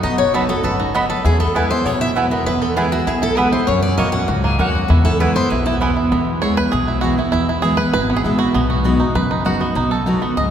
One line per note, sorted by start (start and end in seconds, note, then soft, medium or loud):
0.00 0.49 B1 medium
0.00 0.61 B2 loud
0.00 0.37 B3 medium
0.00 0.46 D#4 medium
0.00 0.18 F#4 medium
0.00 0.18 D#5 loud
0.18 0.61 F#4 medium
0.18 0.33 C#5 loud
0.33 0.48 F#3 medium
0.33 0.48 B3 medium
0.33 0.43 B3 medium
0.33 0.49 D#4 medium
0.33 0.43 F#4 medium
0.33 0.47 F#4 medium
0.33 0.63 A4 medium
0.33 0.49 B4 medium
0.33 0.43 D#5 medium
0.33 0.44 B5 medium
0.48 0.94 B3 medium
0.48 0.64 D#4 soft
0.48 0.63 F#4 medium
0.48 0.64 A4 medium
0.63 1.10 F#1 medium
0.63 0.93 G#2 medium
0.63 1.07 A4 medium
0.63 0.79 B4 medium
0.80 0.94 D#4 medium
0.80 1.22 F#4 medium
0.94 1.24 F#2 medium
0.94 1.04 B3 medium
0.94 1.40 B3 medium
0.94 1.04 F#4 medium
0.94 1.10 F#4 medium
0.94 1.04 D#5 medium
0.94 1.04 B5 medium
1.10 1.25 A4 medium
1.10 1.25 B4 medium
1.25 1.70 E2 medium
1.25 1.83 E2 loud
1.25 1.55 E4 medium
1.25 1.39 G#4 medium
1.40 1.83 B3 medium
1.40 1.55 A4 medium
1.55 1.70 E3 medium
1.55 1.70 G#3 medium
1.55 1.64 B3 medium
1.55 1.71 B3 medium
1.55 1.64 E4 medium
1.55 1.70 E4 soft
1.55 1.69 E4 medium
1.55 1.65 B4 loud
1.55 1.71 B4 medium
1.55 1.65 G#5 loud
1.70 1.86 B3 medium
1.70 1.85 E4 medium
1.70 2.00 E4 medium
1.70 1.85 C5 medium
1.85 2.31 B1 medium
1.85 2.44 B2 medium
1.85 2.29 B3 medium
1.85 2.00 C#5 medium
2.01 2.15 E4 medium
2.01 2.10 E5 loud
2.16 2.31 E3 medium
2.16 2.31 G#3 medium
2.16 2.25 B3 medium
2.16 2.32 B3 medium
2.16 2.25 E4 loud
2.16 2.46 E4 medium
2.16 2.30 E4 medium
2.16 2.26 B4 medium
2.16 2.26 G#5 loud
2.31 2.61 B3 medium
2.31 2.47 B3 soft
2.31 2.46 E4 medium
2.31 2.46 A#4 medium
2.46 3.04 E2 medium
2.46 2.92 E2 medium
2.46 2.76 E4 medium
2.46 2.62 B4 loud
2.62 3.04 B3 medium
2.62 2.76 A4 medium
2.76 3.05 E3 medium
2.76 3.06 G#3 medium
2.76 2.86 B3 medium
2.76 3.06 B3 medium
2.76 2.91 E4 medium
2.76 2.86 E4 medium
2.76 3.06 E4 medium
2.76 2.92 G#4 medium
2.76 2.86 B4 loud
2.76 2.86 G#5 medium
2.92 3.06 E4 medium
2.92 3.07 F#4 medium
3.07 3.53 B1 medium
3.07 3.65 B2 loud
3.07 3.21 E4 medium
3.07 3.22 G#4 medium
3.22 3.51 E4 medium
3.22 3.37 A4 loud
3.37 3.52 E3 soft
3.37 3.52 G#3 medium
3.37 3.68 B3 medium
3.37 3.47 B3 loud
3.37 3.53 B3 medium
3.37 3.47 E4 medium
3.37 3.51 E4 medium
3.37 3.52 B4 medium
3.37 3.47 B4 loud
3.37 3.47 G#5 loud
3.52 3.68 B3 medium
3.52 3.66 E4 medium
3.52 3.67 E4 medium
3.52 3.67 C5 medium
3.67 3.91 F#2 loud
3.67 4.26 F#2 loud
3.67 4.10 C#4 medium
3.67 3.82 C#5 medium
3.82 3.97 D5 medium
3.97 4.24 B1 medium
3.97 4.13 F#3 medium
3.97 4.41 A#3 soft
3.97 4.07 A#3 medium
3.97 4.13 A#3 medium
3.97 4.13 C#4 medium
3.97 4.08 F#4 medium
3.97 4.11 F#4 medium
3.97 4.08 C#5 medium
3.97 4.12 D#5 medium
3.97 4.08 F#5 medium
4.12 4.56 C#4 medium
4.12 4.29 C#4 medium
4.12 4.28 F#4 medium
4.12 4.41 F#5 loud
4.28 4.55 C#2 medium
4.28 4.57 G#2 medium
4.28 4.71 F#4 medium
4.44 4.87 A#3 medium
4.44 4.58 G#4 medium
4.59 4.85 D#2 medium
4.59 4.88 F#2 medium
4.59 4.68 A#3 medium
4.59 4.89 C#4 medium
4.59 4.69 F#4 medium
4.59 4.95 F#4 loud
4.59 4.69 C#5 loud
4.59 4.69 F#5 loud
4.75 4.90 F#4 medium
4.88 5.47 E2 loud
4.88 5.35 E2 loud
4.88 5.04 E4 medium
5.05 5.20 E4 medium
5.05 5.20 A4 medium
5.19 5.34 E3 medium
5.19 5.35 G#3 medium
5.19 5.35 B3 medium
5.19 5.29 B3 medium
5.19 5.29 E4 medium
5.19 5.33 E4 medium
5.19 5.50 E4 soft
5.19 5.35 B4 medium
5.19 5.30 B4 medium
5.19 5.30 G#5 loud
5.35 5.78 B3 medium
5.35 5.50 B3 soft
5.35 5.50 E4 medium
5.35 5.50 C5 loud
5.50 5.96 B1 medium
5.50 6.08 B2 medium
5.50 5.65 E4 medium
5.50 5.65 B4 medium
5.66 5.75 E4 medium
5.66 5.95 E4 medium
5.80 6.10 E3 medium
5.80 6.10 G#3 medium
5.80 5.90 B3 medium
5.80 6.11 B3 medium
5.80 6.10 B3 medium
5.80 5.90 E4 medium
5.80 6.11 E4 medium
5.80 5.90 B4 medium
5.80 5.90 G#5 medium
5.97 6.12 E4 medium
6.12 6.57 E2 loud
6.12 6.70 E2 medium
6.12 7.52 B3 medium
6.42 6.56 E3 medium
6.42 6.57 G#3 loud
6.42 6.57 B3 medium
6.42 6.56 E4 medium
6.42 6.57 C#5 loud
6.57 6.73 B3 soft
6.57 6.72 E4 medium
6.57 6.73 B4 loud
6.72 7.18 B1 medium
6.72 7.30 B2 medium
6.72 7.00 G#4 loud
6.88 7.17 E4 medium
7.01 7.17 E3 medium
7.01 7.18 G#3 medium
7.01 7.18 B3 medium
7.01 7.17 E4 medium
7.01 7.18 F#4 medium
7.18 7.33 B3 soft
7.18 7.32 E4 medium
7.18 7.31 E4 medium
7.32 7.78 E2 loud
7.32 7.91 E2 loud
7.32 7.47 E4 loud
7.49 7.77 E4 medium
7.62 7.78 E3 medium
7.62 7.78 G#3 medium
7.62 7.78 B3 loud
7.62 7.77 E4 loud
7.62 7.79 G#4 loud
7.77 7.94 B3 medium
7.77 7.93 E4 medium
7.77 7.92 B4 loud
7.93 8.20 G#1 medium
7.93 8.52 B2 medium
7.93 8.15 B4 loud
8.10 8.54 B3 medium
8.16 8.24 G#4 medium
8.24 8.50 A1 medium
8.24 8.39 E3 medium
8.24 8.39 G#3 medium
8.24 8.40 B3 medium
8.24 8.55 E4 medium
8.24 8.38 E4 medium
8.39 8.55 B3 medium
8.39 8.54 E4 medium
8.39 8.67 F#4 medium
8.54 9.00 B1 loud
8.54 9.13 B2 medium
8.54 8.85 B3 medium
8.70 9.12 F#4 medium
8.84 8.99 F#3 medium
8.84 9.00 B3 medium
8.84 9.60 B3 medium
8.84 9.00 D#4 loud
8.84 8.98 F#4 loud
8.99 9.30 D#4 medium
8.99 9.15 D#4 medium
8.99 9.14 F#4 medium
9.15 9.61 F#1 medium
9.15 9.73 F#2 medium
9.15 9.45 B4 medium
9.31 9.73 D#4 medium
9.45 9.60 F#3 medium
9.45 9.60 B3 medium
9.45 9.61 D#4 medium
9.45 10.05 F#4 medium
9.45 9.59 F#4 medium
9.60 10.21 B3 medium
9.60 9.76 D#4 medium
9.60 9.75 F#4 medium
9.75 10.21 B1 loud
9.75 10.34 B2 loud
9.75 10.19 D#4 medium
9.91 10.34 A4 medium
10.06 10.21 F#3 medium
10.06 10.21 B3 medium
10.06 10.22 D#4 medium
10.06 10.37 F#4 soft
10.06 10.21 F#4 medium
10.22 10.51 B3 medium
10.22 10.37 D#4 soft
10.22 10.37 F#4 medium
10.37 10.51 C#2 medium
10.37 10.51 G#2 loud
10.37 10.51 D#5 medium